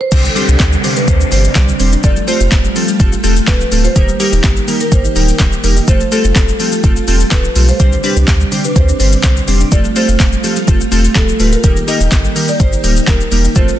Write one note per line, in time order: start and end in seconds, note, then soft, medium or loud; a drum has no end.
0.01 0.30 C5 loud
0.12 0.28 C2 loud
0.12 2.02 C3 medium
0.12 0.23 D3 medium
0.12 0.26 G3 loud
0.12 2.02 G3 medium
0.12 0.26 C4 medium
0.12 0.26 D4 medium
0.12 0.26 G4 medium
0.12 0.26 C5 loud
0.12 kick loud
0.12 closed hi-hat medium
0.12 crash loud
0.12 downlifter medium
0.12 shaker medium
0.24 0.35 G3 medium
0.24 shaker medium
0.29 0.36 A4 medium
0.35 0.50 G3 loud
0.35 0.50 C4 medium
0.35 0.50 D4 medium
0.35 0.93 G4 medium
0.35 0.50 G4 medium
0.35 0.50 C5 loud
0.35 open hi-hat medium
0.35 shaker medium
0.48 0.56 C2 loud
0.48 0.59 D4 medium
0.48 shaker medium
0.60 0.76 D2 loud
0.60 0.74 G3 medium
0.60 0.74 C4 medium
0.60 0.74 G4 medium
0.60 kick loud
0.60 snare medium
0.60 clap loud
0.60 closed hi-hat medium
0.60 shaker medium
0.72 0.83 G3 medium
0.72 shaker medium
0.83 0.96 D3 medium
0.83 0.98 G3 medium
0.83 0.98 C4 medium
0.83 0.98 D4 medium
0.83 0.98 G4 medium
0.83 0.98 C5 medium
0.83 open hi-hat medium
0.83 shaker soft
0.96 1.07 G3 medium
0.96 1.08 B4 loud
0.96 shaker medium
1.07 1.24 D2 loud
1.07 1.22 G3 medium
1.07 1.22 C4 medium
1.07 1.20 C4 medium
1.07 1.22 D4 medium
1.07 1.22 G4 medium
1.07 1.31 C5 medium
1.07 1.22 C5 medium
1.07 kick loud
1.07 closed hi-hat medium
1.07 shaker medium
1.21 1.31 D4 medium
1.21 shaker medium
1.31 1.48 G1 loud
1.31 1.46 G3 medium
1.31 1.46 C4 medium
1.31 1.46 D4 medium
1.31 1.46 G4 medium
1.31 1.76 C5 medium
1.31 1.46 C5 medium
1.31 open hi-hat medium
1.31 shaker medium
1.45 shaker medium
1.55 1.72 C2 loud
1.55 1.68 D3 medium
1.55 1.70 G3 medium
1.55 1.70 C4 medium
1.55 1.70 D4 medium
1.55 1.70 G4 medium
1.55 1.70 D5 loud
1.55 kick loud
1.55 snare loud
1.55 clap loud
1.55 closed hi-hat medium
1.55 shaker medium
1.69 shaker medium
1.80 1.96 E1 loud
1.80 1.94 G3 medium
1.80 1.92 C4 medium
1.80 1.94 C4 medium
1.80 1.94 D4 medium
1.80 1.94 G4 medium
1.80 1.94 C5 medium
1.80 open hi-hat medium
1.80 shaker medium
1.92 2.03 D4 medium
1.92 shaker medium
2.04 2.20 F1 loud
2.04 2.15 F3 medium
2.04 3.94 G3 medium
2.04 2.18 A3 loud
2.04 3.94 A3 medium
2.04 2.18 C4 medium
2.04 3.94 F4 medium
2.04 2.18 F4 medium
2.04 2.18 G4 medium
2.04 2.18 A4 loud
2.04 2.28 D5 loud
2.04 kick loud
2.04 closed hi-hat medium
2.04 shaker medium
2.16 2.27 G3 medium
2.16 shaker soft
2.28 2.42 A3 medium
2.28 2.42 C4 medium
2.28 2.42 F4 medium
2.28 2.42 G4 medium
2.28 3.51 C5 loud
2.28 2.42 C5 loud
2.28 open hi-hat medium
2.28 shaker medium
2.40 2.48 F1 loud
2.40 2.51 F4 medium
2.40 shaker medium
2.52 2.68 E1 medium
2.52 2.66 A3 medium
2.52 2.66 C4 medium
2.52 2.66 F4 medium
2.52 2.66 G4 medium
2.52 2.66 B4 medium
2.52 kick loud
2.52 snare medium
2.52 clap loud
2.52 closed hi-hat medium
2.52 shaker medium
2.64 2.75 G3 medium
2.64 shaker medium
2.76 2.87 F3 medium
2.76 2.90 A3 medium
2.76 2.90 C4 medium
2.76 2.90 F4 medium
2.76 2.90 G4 medium
2.76 2.90 A4 medium
2.76 open hi-hat medium
2.76 shaker medium
2.88 2.99 G3 medium
2.88 shaker medium
3.00 3.16 F1 loud
3.00 3.14 A3 medium
3.00 3.12 A3 medium
3.00 3.14 C4 medium
3.00 3.14 F4 medium
3.00 3.14 G4 medium
3.00 3.14 A4 loud
3.00 kick loud
3.00 closed hi-hat medium
3.00 shaker medium
3.12 3.23 F4 medium
3.12 shaker medium
3.23 3.40 E1 loud
3.23 3.38 A3 medium
3.23 3.38 C4 medium
3.23 3.38 F4 medium
3.23 3.38 G4 medium
3.23 3.38 A4 loud
3.23 open hi-hat medium
3.23 shaker medium
3.36 shaker medium
3.47 3.64 D1 medium
3.47 3.60 F3 medium
3.47 3.62 A3 loud
3.47 3.62 C4 medium
3.47 3.62 F4 medium
3.47 3.62 G4 medium
3.47 3.62 A4 loud
3.47 3.86 B4 loud
3.47 kick loud
3.47 snare loud
3.47 clap loud
3.47 closed hi-hat medium
3.47 shaker medium
3.61 shaker medium
3.71 3.88 D1 medium
3.71 3.86 A3 medium
3.71 3.84 A3 medium
3.71 3.86 C4 medium
3.71 3.86 F4 medium
3.71 3.86 G4 medium
3.71 3.86 A4 medium
3.71 open hi-hat medium
3.71 shaker medium
3.84 3.95 F4 medium
3.84 4.21 C5 loud
3.84 shaker medium
3.96 4.12 D#1 loud
3.96 4.08 D#3 medium
3.96 4.10 G3 loud
3.96 4.10 A#3 medium
3.96 4.10 D#4 medium
3.96 4.10 G4 medium
3.96 4.10 A#4 loud
3.96 kick loud
3.96 closed hi-hat medium
3.96 shaker medium
4.08 4.19 G3 medium
4.08 shaker soft
4.19 4.34 G3 loud
4.19 4.34 A#3 medium
4.19 4.34 D#4 medium
4.19 4.34 G4 medium
4.19 4.82 G4 medium
4.19 4.34 A#4 loud
4.19 open hi-hat medium
4.19 shaker medium
4.32 4.40 D#1 loud
4.32 4.43 D#4 medium
4.32 shaker medium
4.43 4.60 G1 loud
4.43 4.58 G3 medium
4.43 4.58 A#3 medium
4.43 4.58 D#4 medium
4.43 4.58 G4 medium
4.43 4.58 A#4 medium
4.43 kick loud
4.43 snare medium
4.43 clap loud
4.43 closed hi-hat medium
4.43 shaker medium
4.57 4.67 G3 medium
4.57 shaker medium
4.67 4.80 D#3 medium
4.67 4.82 G3 medium
4.67 4.82 A#3 medium
4.67 4.82 D#4 medium
4.67 4.82 G4 medium
4.67 4.82 A#4 medium
4.67 open hi-hat medium
4.67 shaker soft
4.80 4.91 G3 medium
4.80 4.91 A#4 medium
4.80 shaker medium
4.91 5.08 G1 loud
4.91 5.06 G3 medium
4.91 5.06 A#3 medium
4.91 5.04 A#3 medium
4.91 5.06 D#4 medium
4.91 5.06 G4 medium
4.91 5.06 A#4 medium
4.91 5.03 C5 loud
4.91 kick loud
4.91 closed hi-hat medium
4.91 shaker medium
5.05 5.15 D#4 medium
5.05 shaker medium
5.15 5.32 D1 loud
5.15 5.30 G3 medium
5.15 5.30 A#3 medium
5.15 5.30 D#4 medium
5.15 5.30 G4 medium
5.15 5.30 A#4 medium
5.15 5.60 A#4 medium
5.15 open hi-hat medium
5.15 shaker medium
5.28 shaker medium
5.39 5.56 D#1 loud
5.39 5.52 D#3 medium
5.39 5.54 G3 medium
5.39 5.54 A#3 medium
5.39 5.54 D#4 medium
5.39 5.54 G4 medium
5.39 5.54 A#4 loud
5.39 kick loud
5.39 snare medium
5.39 clap loud
5.39 closed hi-hat medium
5.39 shaker medium
5.53 shaker medium
5.63 5.80 E1 loud
5.63 5.78 G3 medium
5.63 5.78 A#3 medium
5.63 5.75 A#3 medium
5.63 5.78 D#4 medium
5.63 5.78 G4 medium
5.63 5.78 A#4 medium
5.63 open hi-hat medium
5.63 shaker medium
5.76 5.87 D#4 medium
5.76 shaker medium
5.88 6.04 F1 loud
5.88 6.00 F3 medium
5.88 6.02 A3 loud
5.88 6.02 C4 medium
5.88 6.02 F4 medium
5.88 6.02 G4 medium
5.88 6.02 A4 loud
5.88 6.13 C5 loud
5.88 kick loud
5.88 closed hi-hat medium
5.88 shaker medium
6.00 6.11 G3 medium
6.00 shaker soft
6.12 6.26 A3 loud
6.12 6.26 C4 medium
6.12 6.26 F4 medium
6.12 6.26 G4 medium
6.12 7.28 A4 loud
6.12 6.26 A4 loud
6.12 open hi-hat medium
6.12 shaker medium
6.24 6.32 F1 loud
6.24 6.35 F4 medium
6.24 shaker medium
6.35 6.52 E1 medium
6.35 6.50 A3 medium
6.35 6.50 C4 medium
6.35 6.50 F4 medium
6.35 6.50 G4 medium
6.35 6.50 A4 medium
6.35 kick loud
6.35 snare medium
6.35 clap loud
6.35 closed hi-hat medium
6.35 shaker medium
6.48 6.59 G3 medium
6.48 shaker medium
6.60 6.71 F3 medium
6.60 6.74 A3 medium
6.60 6.74 C4 medium
6.60 6.74 F4 medium
6.60 6.74 G4 medium
6.60 6.74 A4 medium
6.60 open hi-hat medium
6.60 shaker medium
6.72 6.83 G3 medium
6.72 shaker medium
6.84 7.00 F1 loud
6.84 6.98 A3 medium
6.84 6.95 A3 loud
6.84 6.98 C4 medium
6.84 6.98 F4 medium
6.84 6.98 G4 medium
6.84 6.98 A4 loud
6.84 kick loud
6.84 closed hi-hat medium
6.84 shaker medium
6.96 7.07 F4 medium
6.96 shaker medium
7.08 7.24 E1 loud
7.08 7.22 A3 medium
7.08 7.22 C4 medium
7.08 7.22 F4 medium
7.08 7.22 G4 medium
7.08 7.22 A4 loud
7.08 open hi-hat medium
7.08 shaker medium
7.20 shaker medium
7.31 7.48 D1 loud
7.31 7.43 F3 medium
7.31 7.46 A3 medium
7.31 7.46 C4 medium
7.31 7.46 F4 medium
7.31 7.46 G4 medium
7.31 7.46 A4 loud
7.31 7.66 B4 loud
7.31 kick loud
7.31 snare loud
7.31 clap loud
7.31 closed hi-hat medium
7.31 shaker medium
7.45 shaker medium
7.56 7.72 B1 medium
7.56 7.70 A3 medium
7.56 7.67 A3 medium
7.56 7.70 C4 medium
7.56 7.70 F4 medium
7.56 7.70 G4 medium
7.56 7.70 A4 medium
7.56 open hi-hat medium
7.56 shaker medium
7.69 7.79 F4 medium
7.69 8.01 C5 loud
7.69 shaker medium
7.80 7.96 C2 loud
7.80 9.70 C3 medium
7.80 7.92 D3 medium
7.80 7.94 G3 medium
7.80 7.94 C4 medium
7.80 7.94 D4 medium
7.80 9.70 D4 medium
7.80 7.94 G4 medium
7.80 7.94 C5 loud
7.80 kick loud
7.80 closed hi-hat medium
7.80 shaker medium
7.92 8.03 G3 medium
7.92 shaker soft
8.03 8.18 G3 loud
8.03 8.18 C4 medium
8.03 8.18 D4 medium
8.03 8.18 G4 medium
8.03 8.66 G4 medium
8.03 8.18 B4 loud
8.03 open hi-hat medium
8.03 shaker medium
8.16 8.24 C2 loud
8.16 8.27 D4 medium
8.16 shaker medium
8.28 8.44 D2 loud
8.28 8.42 G3 medium
8.28 8.42 C4 medium
8.28 8.42 D4 medium
8.28 8.42 G4 medium
8.28 8.42 C5 medium
8.28 kick loud
8.28 snare medium
8.28 clap loud
8.28 closed hi-hat medium
8.28 shaker medium
8.40 8.51 G3 medium
8.40 shaker medium
8.52 8.64 D3 medium
8.52 8.66 G3 medium
8.52 8.66 C4 medium
8.52 8.66 D4 medium
8.52 8.66 G4 medium
8.52 8.66 C5 medium
8.52 open hi-hat medium
8.52 shaker medium
8.64 8.75 G3 medium
8.64 8.76 B4 medium
8.64 shaker medium
8.76 8.92 D2 loud
8.76 8.90 G3 medium
8.76 8.90 C4 medium
8.76 8.88 C4 loud
8.76 8.90 D4 medium
8.76 8.90 G4 medium
8.76 8.90 C5 medium
8.76 8.99 C5 medium
8.76 kick loud
8.76 closed hi-hat medium
8.76 shaker medium
8.89 8.99 D4 medium
8.89 shaker medium
8.99 9.16 G1 loud
8.99 9.14 G3 medium
8.99 9.14 C4 medium
8.99 9.14 D4 medium
8.99 9.14 G4 medium
8.99 9.14 C5 medium
8.99 9.45 C5 medium
8.99 open hi-hat medium
8.99 shaker medium
9.13 shaker medium
9.23 9.40 C2 loud
9.23 9.36 D3 medium
9.23 9.38 G3 medium
9.23 9.38 C4 medium
9.23 9.38 D4 medium
9.23 9.38 G4 medium
9.23 9.38 C5 loud
9.23 kick loud
9.23 snare loud
9.23 clap loud
9.23 closed hi-hat medium
9.23 shaker medium
9.37 shaker medium
9.48 9.64 E1 loud
9.48 9.62 G3 medium
9.48 9.62 C4 medium
9.48 9.60 C4 medium
9.48 9.62 D4 medium
9.48 9.62 G4 medium
9.48 9.62 C5 medium
9.48 open hi-hat medium
9.48 shaker medium
9.61 9.71 D4 medium
9.61 shaker medium
9.72 9.88 F1 loud
9.72 9.84 F3 medium
9.72 11.62 A3 medium
9.72 9.86 A3 loud
9.72 9.86 C4 medium
9.72 11.62 F4 medium
9.72 9.86 F4 medium
9.72 9.86 G4 medium
9.72 9.86 A4 loud
9.72 9.97 D5 loud
9.72 kick loud
9.72 closed hi-hat medium
9.72 shaker medium
9.84 9.95 G3 medium
9.84 shaker medium
9.96 10.10 A3 loud
9.96 10.10 C4 medium
9.96 10.10 F4 medium
9.96 10.10 G4 medium
9.96 10.10 A4 loud
9.96 11.12 C5 medium
9.96 open hi-hat medium
9.96 shaker medium
10.09 10.16 F1 loud
10.09 10.19 F4 medium
10.09 shaker medium
10.19 10.36 E1 loud
10.19 10.34 A3 medium
10.19 10.34 C4 medium
10.19 10.34 F4 medium
10.19 10.34 C5 medium
10.19 kick loud
10.19 snare medium
10.19 clap loud
10.19 closed hi-hat medium
10.19 shaker medium
10.33 10.43 G3 medium
10.33 shaker medium
10.43 10.56 F3 medium
10.43 10.58 A3 medium
10.43 10.58 C4 medium
10.43 10.58 F4 medium
10.43 10.58 G4 medium
10.43 10.58 A4 medium
10.43 open hi-hat medium
10.43 shaker medium
10.56 10.67 G3 medium
10.56 shaker medium
10.67 10.84 F1 loud
10.67 10.82 A3 medium
10.67 10.80 A3 loud
10.67 10.82 C4 medium
10.67 10.82 F4 medium
10.67 10.82 G4 medium
10.67 10.82 A4 loud
10.67 kick loud
10.67 closed hi-hat medium
10.67 shaker medium
10.80 10.91 F4 medium
10.80 shaker medium
10.91 11.08 E1 loud
10.91 11.06 A3 medium
10.91 11.06 C4 medium
10.91 11.06 F4 medium
10.91 11.06 G4 medium
10.91 11.06 A4 loud
10.91 open hi-hat medium
10.91 shaker medium
11.05 shaker medium
11.15 11.32 D1 loud
11.15 11.28 F3 medium
11.15 11.30 A3 loud
11.15 11.30 C4 medium
11.15 11.30 F4 medium
11.15 11.30 G4 medium
11.15 11.30 A4 loud
11.15 11.54 A4 loud
11.15 kick loud
11.15 snare medium
11.15 clap loud
11.15 closed hi-hat medium
11.15 shaker medium
11.29 shaker medium
11.39 11.56 D1 medium
11.39 11.54 A3 medium
11.39 11.51 A3 medium
11.39 11.54 C4 medium
11.39 11.54 F4 medium
11.39 11.54 G4 medium
11.39 11.54 B4 medium
11.39 open hi-hat medium
11.39 shaker medium
11.52 11.63 F4 medium
11.52 11.89 A#4 loud
11.52 shaker medium
11.63 11.80 D#1 loud
11.63 11.75 D#3 medium
11.63 13.54 D#3 medium
11.63 11.78 G3 loud
11.63 11.78 A#3 medium
11.63 13.54 A#3 medium
11.63 11.78 D#4 medium
11.63 11.78 G4 medium
11.63 13.54 G4 medium
11.63 11.78 A#4 loud
11.63 kick loud
11.63 closed hi-hat medium
11.63 shaker medium
11.76 11.87 G3 medium
11.76 shaker soft
11.87 12.02 G3 loud
11.87 12.02 A#3 medium
11.87 12.02 D#4 medium
11.87 12.02 G4 medium
11.87 12.02 A#4 loud
11.87 12.51 D#5 loud
11.87 open hi-hat medium
11.87 shaker medium
12.00 12.08 D#1 loud
12.00 12.11 D#4 medium
12.00 shaker medium
12.11 12.28 G1 loud
12.11 12.26 G3 medium
12.11 12.26 A#3 medium
12.11 12.26 G4 medium
12.11 kick loud
12.11 snare medium
12.11 clap loud
12.11 closed hi-hat medium
12.11 shaker medium
12.24 12.35 G3 medium
12.24 shaker soft
12.35 12.47 D#3 medium
12.35 12.50 G3 medium
12.35 12.50 A#3 medium
12.35 12.50 D#4 medium
12.35 12.50 G4 medium
12.35 12.50 A#4 medium
12.35 open hi-hat medium
12.35 shaker medium
12.48 12.59 G3 medium
12.48 12.60 D5 loud
12.48 shaker medium
12.59 12.76 G1 loud
12.59 12.74 G3 medium
12.59 12.74 A#3 medium
12.59 12.72 A#3 loud
12.59 12.74 D#4 medium
12.59 12.74 G4 medium
12.59 12.74 C5 medium
12.59 13.09 C5 loud
12.59 kick loud
12.59 closed hi-hat medium
12.59 shaker medium
12.73 12.83 D#4 medium
12.73 shaker medium
12.83 13.00 D1 medium
12.83 12.98 G3 medium
12.83 12.98 A#3 medium
12.83 12.98 D#4 medium
12.83 12.98 G4 medium
12.83 12.98 A#4 medium
12.83 open hi-hat medium
12.83 shaker medium
12.97 shaker medium
13.07 13.24 D#1 loud
13.07 13.20 D#3 medium
13.07 13.22 G3 loud
13.07 13.22 A#3 medium
13.07 13.22 D#4 medium
13.07 13.22 G4 medium
13.07 13.57 A#4 medium
13.07 13.22 A#4 loud
13.07 kick loud
13.07 snare loud
13.07 clap loud
13.07 closed hi-hat medium
13.07 shaker medium
13.21 shaker medium
13.32 13.48 E1 medium
13.32 13.46 G3 medium
13.32 13.44 A#3 medium
13.32 13.46 A#3 medium
13.32 13.46 D#4 medium
13.32 13.46 G4 medium
13.32 13.46 A#4 medium
13.32 open hi-hat medium
13.32 shaker medium
13.44 13.55 D#4 medium
13.44 shaker medium
13.56 13.72 F1 loud
13.56 13.68 F3 medium
13.56 13.79 G3 medium
13.56 13.70 A3 loud
13.56 13.79 A3 medium
13.56 13.70 C4 medium
13.56 13.79 F4 medium
13.56 13.70 F4 medium
13.56 13.70 G4 medium
13.56 13.70 A4 loud
13.56 13.79 C5 medium
13.56 kick loud
13.56 closed hi-hat medium
13.56 shaker medium
13.68 13.79 G3 medium
13.68 shaker medium